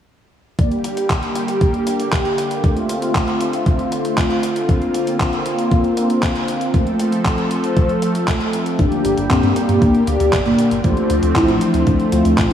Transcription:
0.59 analog synth pad D3 G3 A#3 G4, analog polysynth A#3 D4 G4 D5, kick, closed hi-hat
0.71 closed hi-hat
0.84 closed hi-hat
0.97 closed hi-hat
1.10 kick, clap, closed hi-hat
1.23 closed hi-hat
1.35 closed hi-hat
1.48 closed hi-hat
1.61 kick, closed hi-hat
1.74 closed hi-hat
1.87 analog polysynth A#3 D4 G4 D5, closed hi-hat
2.00 closed hi-hat
2.12 kick, clap, closed hi-hat
2.25 closed hi-hat
2.38 closed hi-hat
2.51 closed hi-hat
2.64 analog synth pad A3 C4 F4, analog polysynth A3 D4 F4 C5, kick, closed hi-hat
2.77 closed hi-hat
2.89 closed hi-hat
3.02 closed hi-hat
3.15 kick, clap, closed hi-hat
3.28 closed hi-hat
3.41 closed hi-hat
3.53 closed hi-hat
3.66 kick, closed hi-hat
3.79 closed hi-hat
3.92 analog polysynth A3 D4 F4 C5, closed hi-hat
4.05 closed hi-hat
4.18 kick, clap, closed hi-hat
4.30 closed hi-hat
4.43 closed hi-hat
4.56 closed hi-hat
4.69 analog synth pad A#3, analog polysynth A#3 D4 F4 C5, kick, closed hi-hat
4.82 closed hi-hat
4.94 closed hi-hat
5.07 closed hi-hat
5.20 kick, clap, closed hi-hat
5.33 closed hi-hat
5.46 closed hi-hat
5.59 closed hi-hat
5.71 kick, closed hi-hat
5.84 closed hi-hat
5.97 analog polysynth A#3 D4 F4 C5, closed hi-hat
6.10 closed hi-hat
6.23 kick, clap, closed hi-hat
6.35 closed hi-hat
6.48 closed hi-hat
6.61 closed hi-hat
6.74 analog synth pad F3 A3 A4, analog polysynth A3 C4 F4 C5, kick, closed hi-hat
6.87 closed hi-hat
7.00 closed hi-hat
7.12 closed hi-hat
7.25 kick, clap, closed hi-hat
7.38 closed hi-hat
7.51 closed hi-hat
7.64 closed hi-hat
7.77 kick, closed hi-hat
7.89 closed hi-hat
8.02 closed hi-hat
8.15 closed hi-hat
8.28 kick, clap, closed hi-hat
8.41 closed hi-hat
8.53 closed hi-hat
8.66 closed hi-hat
8.79 analog synth bass G1, analog synth pad D3 G3 A#3 G4, analog polysynth A#3 D4 G4 D5, soft synth lead D4, kick, closed hi-hat
8.92 closed hi-hat
9.05 analog synth bass G1, closed hi-hat
9.17 analog synth bass G1, closed hi-hat
9.30 analog synth bass G2, soft synth lead C4, kick, clap, closed hi-hat
9.43 analog synth bass G2, closed hi-hat
9.56 closed hi-hat
9.69 analog synth bass G2, soft synth lead A#3, closed hi-hat
9.82 analog synth bass D2, kick, closed hi-hat
9.95 closed hi-hat
10.07 analog synth bass D2, analog polysynth A#3 D4 G4 D5, closed hi-hat
10.20 analog synth bass D2, closed hi-hat
10.33 analog synth bass G1, kick, clap, closed hi-hat
10.46 analog synth bass G1, soft synth lead A#3, closed hi-hat
10.59 closed hi-hat
10.71 analog synth bass G1, closed hi-hat
10.84 analog synth bass D2, analog synth pad F3 A3 C4, analog polysynth F3 A3 D4 C5, soft synth lead F4, kick, closed hi-hat
10.97 closed hi-hat
11.10 analog synth bass D2, closed hi-hat
11.23 analog synth bass D2, closed hi-hat
11.35 analog synth bass D2, soft synth lead E4, kick, clap, closed hi-hat
11.48 analog synth bass A1, closed hi-hat
11.61 closed hi-hat
11.74 analog synth bass D2, soft synth lead D4, closed hi-hat
11.87 analog synth bass D2, kick, closed hi-hat
12.00 closed hi-hat
12.12 analog synth bass D2, analog polysynth A3 D4 F4 C5, closed hi-hat
12.25 analog synth bass D2, closed hi-hat
12.38 analog synth bass A1, kick, clap, closed hi-hat

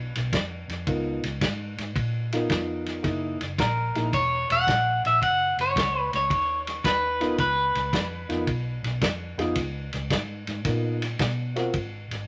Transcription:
Already playing: fingered electric bass B1
0.15 fingered electric bass B1, snare, ride
0.33 kick, snare, ride
0.68 fingered electric bass F2, snare, ride
0.87 fingered electric bass C#2, upright piano B3 D#4 F4 A#4, kick, ride
1.23 fingered electric bass C#2, snare, ride
1.41 fingered electric bass G#2, kick, snare, ride
1.78 fingered electric bass G#2, snare, ride
1.96 fingered electric bass A#2, kick, ride
2.32 upright piano B3 D#4 F4 A#4, snare, ride
2.49 fingered electric bass F2, kick, snare, ride
2.86 snare, ride
3.03 fingered electric bass F#1, upright piano A#3 D#4 E4 G#4, kick, snare, ride
3.41 fingered electric bass F#1, snare, ride
3.58 fingered electric bass A#1, clean electric guitar A#4, kick, snare, ride
3.95 fingered electric bass A#1, upright piano A#3 D#4 E4 G#4, snare, ride
4.13 fingered electric bass E1, clean electric guitar C#5, kick, ride
4.50 fingered electric bass E1, clean electric guitar F#5, snare, ride
4.67 fingered electric bass A#1, kick, snare, ride
5.04 fingered electric bass A#1, clean electric guitar E5, snare, ride
5.22 fingered electric bass F#1, clean electric guitar F#5, kick, ride
5.57 fingered electric bass F#1, clean electric guitar C#5, snare, ride
5.76 fingered electric bass C#2, kick, snare, ride
6.13 fingered electric bass C#2, clean electric guitar C#5, snare, ride
6.30 fingered electric bass D#2, kick, ride
6.67 snare, ride
6.84 fingered electric bass D#2, clean electric guitar B4, kick, snare, ride
7.20 upright piano B3 D#4 F4 A#4, snare, ride
7.38 fingered electric bass C#2, clean electric guitar B4, kick, snare, ride
7.75 fingered electric bass C#2, snare, ride
7.93 fingered electric bass F2, kick, snare, ride
8.29 fingered electric bass F2, upright piano B3 D#4 F4 A#4, snare, ride
8.47 fingered electric bass B1, kick, ride
8.83 fingered electric bass B1, snare, ride
9.01 fingered electric bass F2, kick, snare, ride
9.38 fingered electric bass F2, upright piano B3 D#4 F4 G#4, snare, ride
9.55 fingered electric bass C#2, kick, snare, ride
9.93 fingered electric bass C#2, snare, ride
10.10 fingered electric bass G#2, kick, snare, ride
10.47 fingered electric bass G#2, snare, ride
10.65 fingered electric bass A#2, upright piano B3 D#4 F4 A#4, kick, snare, ride
11.02 snare, ride
11.19 fingered electric bass B2, kick, snare, ride
11.56 upright piano C4 F4 F#4 A#4, snare, ride
11.74 fingered electric bass G#1, kick, ride
12.11 fingered electric bass G#1, snare, ride

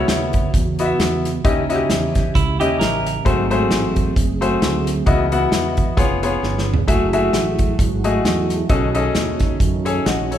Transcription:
Already playing: grand piano C#3 B3 E4 F#4 C#5, tonewheel organ C#3 B3 F#4
0.08 fingered electric bass D#2, snare, closed hi-hat
0.33 kick, closed hi-hat
0.54 fingered electric bass E2, kick, closed hi-hat
0.79 grand piano B3 E4 F#4 D#5, closed hi-hat
0.85 grand piano E5
0.99 fingered electric bass E2, snare, closed hi-hat
1.25 snare, closed hi-hat
1.44 fingered electric bass D#2, grand piano D#3 C#4 E4 G4 D#5, tonewheel organ C#4 G4, kick, closed hi-hat
1.69 grand piano C#4 E4 F#4 D#5, closed hi-hat
1.75 grand piano G4
1.90 fingered electric bass E2, snare, closed hi-hat
2.15 kick, snare, closed hi-hat
2.35 fingered electric bass C#2, clean electric guitar E4, kick, closed hi-hat
2.60 fingered electric bass D#2, grand piano C#4 E4 G4 D#5, clean electric guitar G4, closed hi-hat
2.79 fingered electric bass A1, clean electric guitar A#4, snare, closed hi-hat
3.06 snare, closed hi-hat
3.25 fingered electric bass G#1, grand piano G#2 A3 F#4 G#4 C5, tonewheel organ F#3 A3 C4 G#4, kick, closed hi-hat
3.50 grand piano A3 F#4 G#4 C5, closed hi-hat
3.71 fingered electric bass A1, snare, closed hi-hat
3.96 kick, closed hi-hat
4.16 fingered electric bass F#1, kick, closed hi-hat
4.41 grand piano A3 F#4 G#4 C5, closed hi-hat
4.62 fingered electric bass D2, snare, closed hi-hat
4.87 snare, closed hi-hat
5.06 fingered electric bass C#2, grand piano C#3 B3 E4 F#4 D#5, tonewheel organ E3 B3 F#4 D#5, kick, closed hi-hat
5.32 grand piano B3 E4 F#4 F#5, closed hi-hat
5.52 fingered electric bass E2, snare, closed hi-hat
5.77 kick, closed hi-hat
5.97 fingered electric bass F1, tonewheel organ F3 C#4 G#4, grand piano B3 F4 G#4 C#5, kick, closed hi-hat
6.23 grand piano B3 F4 G#4 C#5, closed hi-hat
6.43 fingered electric bass G1, snare
6.58 snare
6.74 floor tom
6.87 fingered electric bass F#1, tonewheel organ F#3 E4, grand piano A3 F#4 G#4 E5, french horn section A3 E4 F#4, kick, closed hi-hat
7.13 grand piano A3 F#4 G#4 E5, closed hi-hat
7.33 fingered electric bass A1, snare, closed hi-hat
7.59 kick, closed hi-hat
7.79 fingered electric bass G#1, kick, closed hi-hat
8.04 grand piano A3 F#4 G#4 D#5, closed hi-hat
8.24 fingered electric bass E2, snare, closed hi-hat
8.50 snare, closed hi-hat
8.69 fingered electric bass B1, grand piano B2 C#4 G#4 A4 D#5, tonewheel organ D#3 C#4 F#4, french horn section C#4 D#4, kick, closed hi-hat
8.94 grand piano C#4 G#4 A4 D#5, closed hi-hat
9.15 fingered electric bass D#2, snare, closed hi-hat
9.40 kick, snare, closed hi-hat
9.60 fingered electric bass F#2, kick, closed hi-hat
9.85 grand piano C#4 G#4 A4 C#5, closed hi-hat
10.06 fingered electric bass A#1, grand piano D#5 F#5, snare, closed hi-hat
10.31 grand piano A4 C#5, closed hi-hat

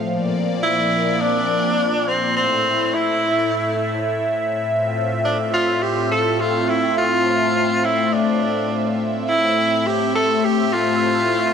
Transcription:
Already playing: analog synth pad F3 C4
0.05 analog synth pad A#2 A#3 D5
0.63 tenor saxophone E4
1.21 tenor saxophone D4
2.08 tenor saxophone C4
2.36 analog synth pad A2 A3 E4 E5, tenor saxophone C4
2.94 tenor saxophone E4
4.67 analog synth pad A3 C4 F4
5.25 tenor saxophone D4
5.54 tenor saxophone F4
5.83 tenor saxophone G4
6.12 tenor saxophone A4
6.40 tenor saxophone F4
6.69 tenor saxophone E4
6.98 tenor saxophone F4
7.85 tenor saxophone E4
8.14 tenor saxophone D4
9.28 analog synth pad A2 A3 C4 E5, tenor saxophone E4
9.87 tenor saxophone G4
10.15 tenor saxophone A4
10.44 tenor saxophone G4
10.73 tenor saxophone F4

